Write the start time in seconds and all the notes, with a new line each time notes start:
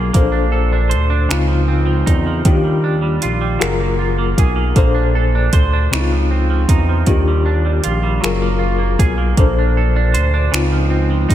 Already playing: B1 F#3 A#3 F4 G#4 A#4
0.14 A#1 A#2 A#3 C4 A4 C5, kick, closed hi-hat
0.22 D4
0.32 D4
0.52 A4
0.73 D4
0.90 C5, closed hi-hat
0.94 D2
1.10 D4
1.29 C#2 C#3 C4 D#4 F4, finger snap, closed hi-hat
1.48 F3
1.68 C4
1.86 F3
2.06 E2 D#4, kick, closed hi-hat
2.27 F3
2.45 D#2 D#3 D4 F4 G4, kick, closed hi-hat
2.64 G3
2.84 D4
3.02 G3
3.22 A#1 F4, closed hi-hat
3.41 G3
3.59 F#1 F#3 F4 G#4 A#4, finger snap, closed hi-hat
3.80 A#3
3.99 F4
4.19 A#3
4.38 B1 G#4, kick, closed hi-hat
4.56 A#3
4.75 A#1 A#2 A#3 D4 A4 C5, kick, closed hi-hat
4.95 D4
5.15 A4
5.35 D4
5.53 D2 C5, kick, closed hi-hat
5.73 D4
5.91 C#2 C#3 C4 D#4 E4, finger snap, closed hi-hat
6.01 F4
6.12 F3
6.31 C4
6.50 F3
6.69 E2 D#4, kick, closed hi-hat
6.89 F3
7.07 D#2 D#3 D4 F4 G4, kick, closed hi-hat
7.28 G3
7.46 D4
7.66 G3
7.84 A#1 F4, closed hi-hat
8.03 G3
8.21 F#3 F4 G#4, finger snap, closed hi-hat
8.25 F#1 A#4
8.42 A#3
8.59 F4
8.78 A#3
8.99 B1 G#4, kick, closed hi-hat
9.18 A#3
9.37 A#1 A#2 A#3 D4 A4 C5, kick, closed hi-hat
9.59 D4
9.77 A4
9.96 D4
10.14 D2 C5, closed hi-hat
10.34 D4
10.52 C#2 C#3 C4 D#4 F4, finger snap, closed hi-hat
10.72 F3
10.90 C4
11.11 F3
11.29 E2 D#4, kick, closed hi-hat